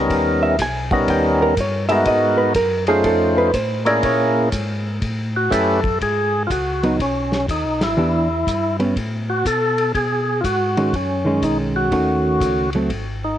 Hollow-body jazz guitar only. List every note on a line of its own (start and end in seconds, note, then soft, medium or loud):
0.43 0.59 E5 medium
0.62 0.92 G#5 loud
0.92 1.09 F#5 medium
1.10 1.41 G5 medium
1.42 1.58 A#4 medium
1.60 1.88 C#5 medium
1.89 2.06 E5 loud
2.07 2.39 D#5 medium
2.38 2.55 B4 medium
2.56 2.87 A#4 medium
2.88 3.05 G#4 medium
3.06 3.37 A4 medium
3.38 3.54 B4 loud
3.55 3.86 C5 medium
3.87 4.03 D5 loud
4.05 4.99 C#5 medium
6.83 6.98 F#3 medium
6.83 6.98 B3 medium
6.83 6.99 D#4 medium
7.97 8.26 E3 medium
7.97 8.27 B3 medium
7.97 8.27 D4 medium
7.97 8.27 G4 medium
8.79 8.95 G3 medium
8.79 8.95 B3 medium
8.79 8.95 C#4 medium
10.77 10.92 D#3 medium
10.77 10.92 G#3 medium
10.77 10.93 C#4 medium
11.25 11.88 D#3 medium
11.25 11.89 G#3 medium
11.25 11.89 C#4 medium
11.92 12.67 D#3 medium
11.92 12.67 A3 medium
11.92 12.68 C#4 medium
11.92 12.68 F#4 medium
12.75 12.90 F#3 soft
12.75 12.90 A3 medium
12.75 12.90 C4 medium